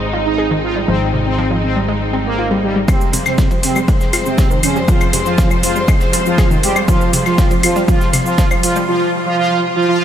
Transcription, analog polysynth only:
0.26 D#4
0.63 F4
0.89 C4
1.26 C4
1.63 C4
2.26 A#3
2.63 G3
2.89 C3 C4
3.26 C3 C4
3.63 C3 C4
4.26 C3 C4
4.63 C#3 C#4
4.88 F3 F4
5.26 F3 F4
5.63 F3 F4
6.26 F3 F4
6.63 G3 G4
6.88 F3 F4
7.26 F3 F4
7.63 F3 F4
7.88 F3 F4
8.26 F3 F4
8.63 F3 F4
8.88 F3 F4
9.26 F3 F4
9.38 F3 F4
9.76 F3 F4
9.88 F3 F4

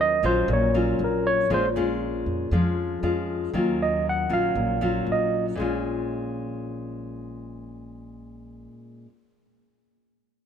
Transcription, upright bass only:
Already playing: D#2
0.23 A#1
0.48 A#1
0.99 A#1
1.50 A#1
2.26 F2
2.51 F2
3.03 F2
3.54 D#2
4.30 A#1
4.55 A#1
5.07 A#1
5.58 A#1

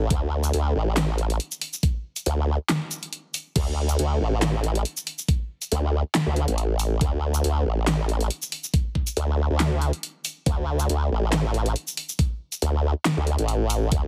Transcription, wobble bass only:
0.10 D2
0.54 D2
0.75 A1
2.26 D2
3.56 D2
3.99 D2
4.21 A1
5.72 D2
6.26 D2
6.48 A1
7.01 D2
7.44 D2
7.66 A1
9.17 D2
9.50 D2
10.46 D2
10.89 D2
11.11 A1
12.62 D2
13.17 D2
13.39 A1
13.92 D2

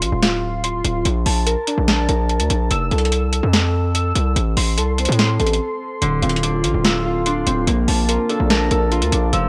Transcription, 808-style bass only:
0.02 A1
0.12 D1
0.85 D1
1.05 A#1
1.26 A#1
1.78 A#1
2.09 A#1
2.40 D2
2.50 A#1
2.71 F1
2.91 C2
3.43 F2
4.15 C2
4.36 A1
4.57 A1
4.78 C2
5.09 A2
5.40 A1
6.02 D1
6.22 D1
6.64 A1
6.74 D1
7.47 D1
7.67 A#1
7.88 A#1
8.40 A#1
8.71 A#1
9.02 D2
9.12 A#1
9.33 F1

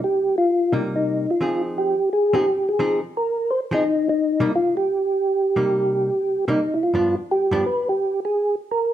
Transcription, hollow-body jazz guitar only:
0.73 C3 G3 A#3 D#4
1.41 F3 C4 D#4 G#4
2.33 F3 C4 D#4 G#4
2.79 F3 C4 D#4 G#4
3.71 F3 C4 D#4 G#4
4.40 C3 G3 A#3 D#4
5.56 C3 G3 A#3 D#4
6.48 C3 G3 A#3 D#4
6.94 G2 F3 B3 D4
7.51 G2 F3 B3 D4

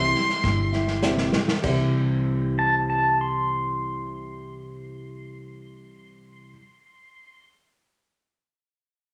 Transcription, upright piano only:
Already playing: G4 C5 E5
0.73 E5
1.02 G4 C5 E5 G5
1.62 G4 C5 E5

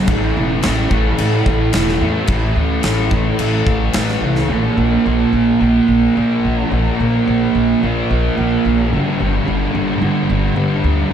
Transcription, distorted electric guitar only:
0.08 A2 E3 A3
0.63 A2 E3 A3
0.91 E3 A3
1.73 A2 E3 A3
2.01 E3 A3
2.28 A2 E3 A3
2.84 A2 E3 A3
3.12 E3 A3
3.94 A2 E3 A3
4.22 E3 A3
4.50 A#2 F3 A#3
5.05 A#2 F3 A#3
5.60 A#2 F3 A#3
6.14 A#2 F3 A#3
6.70 A#2 F3 A#3
7.25 A#2 F3 A#3
7.81 A#2 F3 A#3
8.36 A#2 F3 A#3
8.90 G2 D3 G3
9.46 G2 D3 G3
10.00 G2 D3 G3
10.55 G2 D3 G3
11.10 D#3

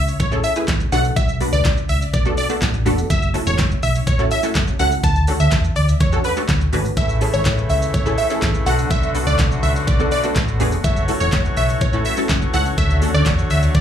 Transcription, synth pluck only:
Already playing: A3 C#4 E4 G#4 A4
0.31 A3 C#4 E4 G#4 A4
0.56 A3 C#4 E4 G#4 B4
0.92 A3 B3 D4 F#4 A4
1.41 A3 B3 D4 F#4 B4
2.25 A3 B3 D4 F#4 A4
2.49 A3 B3 D4 F#4 A4
2.86 A3 B3 D4 F#4 A4
3.34 A3 C#4 E4 F#4 A4
4.19 A3 C#4 E4 F#4 A4
4.43 A3 C#4 E4 F#4 A4
4.79 A3 C#4 E4 F#4 A4
5.28 A3 C#4 D4 F#4 A4
6.12 A3 C#4 D4 F#4 A4
6.37 A3 C#4 D4 F#4 A4
6.73 A3 C#4 D4 F#4 B4
7.21 A3 C#4 E4 G#4 A4
8.05 A3 C#4 E4 G#4 A4
8.30 A3 C#4 E4 G#4 A4
8.66 A3 B3 D4 F#4 A4
9.14 A3 B3 D4 F#4 A4
9.99 A3 B3 D4 F#4 A4
10.23 A3 B3 D4 F#4 A4
10.60 A3 B3 D4 F#4 G#4
11.08 A3 C#4 E4 F#4 A4
11.93 A3 C#4 E4 F#4 A4
12.17 A3 C#4 E4 F#4 A4
12.54 A3 C#4 E4 F#4 A4
13.02 A3 C#4 D4 F#4 A4

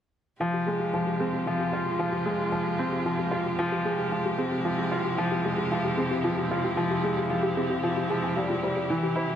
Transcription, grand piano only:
0.41 F3
0.68 G#3
0.94 F3
1.20 C4
1.47 F3
1.73 F4
1.99 F3
2.26 G#3
2.52 F3
2.79 C4
3.06 F3
3.31 F4
3.59 F3
3.85 G#3
4.12 F3
4.38 C4
4.65 F3
4.92 F4
5.18 F3
5.45 G#3
5.72 F3
5.97 C4
6.24 F3
6.51 F4
6.77 F3
7.04 G#3
7.30 F3
7.57 C4
7.83 F3
8.10 F3
8.37 G3
8.63 G3
8.90 E3
9.16 E4

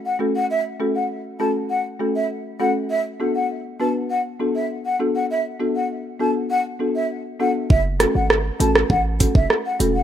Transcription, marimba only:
0.19 A3 C#4 F#4 A4
0.79 A3 C#4 F#4 A4
1.40 A3 C#4 F#4 A4
1.99 A3 C#4 F#4 A4
2.60 A3 C#4 F#4 A4
3.20 B3 D4 F#4 A4
3.80 B3 D4 F#4 B4
4.40 B3 D4 F#4 A4
4.99 B3 D4 F#4 A4
5.60 B3 D4 F#4 A4
6.20 B3 D4 F#4 A4
6.79 B3 D4 F#4 A4
7.39 B3 D4 F#4 A4
8.00 A3 C#4 F#4 A4
8.59 A3 C#4 F#4 A4
9.20 A3 C#4 F#4 A4
9.80 A3 C#4 F#4 A4

